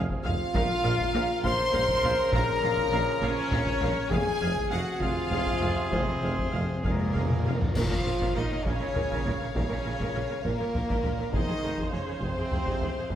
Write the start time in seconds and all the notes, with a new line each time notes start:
Already playing: C3 F3 G#4
0.10 taiko
0.23 F1 F2 F4 G#4 F5, taiko low
0.54 A#1 A#2 C#3 F3 A#4 F5, taiko
0.84 A#1 A#2 A#4 F5
0.99 taiko
1.13 A#1 A#2 A#4 F5
1.43 A#1 A#2 A#4 C5 F5 C6, taiko
1.73 A#1 A#2 A#4 F5, taiko low
1.88 taiko
2.03 A#1 A#2 A#4 F5, taiko low
2.32 A#1 A#2 A#4 F5 A#5, taiko
2.62 A#1 A#2 A#4 F5
2.77 taiko
2.91 A#1 A#2 A#4 F5
3.21 A#1 A#2 C#4 A#4 C#5 F5, taiko
3.51 A#1 A#2 A#4 F5, taiko low
3.66 taiko
3.80 A#1 A#2 A#4 F5, taiko low
4.10 F1 F2 C3 F3 G#4 F5 G#5, taiko
4.19 F2
4.34 F2
4.41 F1 F2 G#4 F5
4.56 F2, taiko
4.64 F2
4.70 F1 F2 F#4 G#4 F5 F#5
4.79 F2
4.87 F2
4.95 F2
5.00 F1 F2 F4 G#4 F5, taiko
5.10 F2
5.17 F2
5.24 F2
5.31 F1 F2 G#4 F5, taiko low
5.39 F2
5.47 F2, taiko
5.55 F2
5.61 F1 F2 G#4 F5, taiko low
5.70 F2
5.77 F2
5.85 F2
5.91 F1 F2 C4 G#4 C5 F5, taiko
6.00 F2
6.08 F2, taiko rim
6.16 F2
6.22 F1 F2 G#4 F5
6.31 F2
6.39 F2, taiko
6.46 F2
6.53 F1 F2 G#4 F5
6.61 F2
6.69 F2
6.77 F2
6.83 F1 F2 G#2 A#2 A#3 G#4 A#4 F5, taiko
6.93 F2
7.01 F2
7.09 F2
7.14 F1 F2 G#4 F5, taiko low
7.25 F2
7.30 F2, taiko mid
7.40 F2
7.44 F1 F2 F#2 G#4 F5, taiko mid
7.55 F2
7.62 F2, taiko low
7.75 A#1 A#2 F3 F4 A#4 C#5 F5, concert bass drum, taiko, crash
7.91 A#2 A#4
8.05 A#1 A#2 A#4
8.21 A#2 A#4, taiko
8.35 A#1 A#2 D#3 D#4 A#4 D#5
8.51 A#2 A#4
8.64 A#1 A#2 C#3 C#4 A#4 C#5, taiko
8.80 A#2 A#4
8.95 A#1 A#2 A#4, taiko low
9.11 A#2 A#4, taiko
9.25 A#1 A#2 A#4, taiko low
9.40 A#2 A#4
9.55 A#1 A#2 C#3 C#4 A#4 C#5, taiko
9.69 A#2 A#4
9.84 A#1 A#2 A#4
10.00 A#2 A#4, taiko
10.14 A#1 A#2 A#4
10.29 A#2 A#4
10.43 A#1 A#2 A#3 A#4, taiko
10.59 A#2 A#4
10.74 A#1 A#2 A#4, taiko low
10.89 A#2 A#4, taiko
11.04 A#1 A#2 A#4, taiko low
11.19 A#2 A#4
11.32 F1 F2 D#3 D#4 G#4 C5 D#5 F5, taiko
11.48 F2 G#4
11.63 F1 F2 G#4
11.78 F2 G#4, taiko
11.92 F1 F2 C#3 C#4 G#4 C#5
12.08 F2 G#4
12.20 F1 F2 C3 G#4 C5, taiko
12.24 C4
12.37 F2 G#4
12.51 F1 F2 G#4, taiko low
12.66 F2 G#4, taiko
12.80 F1 F2 G#4, taiko low
12.96 F2 G#4
13.09 F1 F2 C3 C4 C5, taiko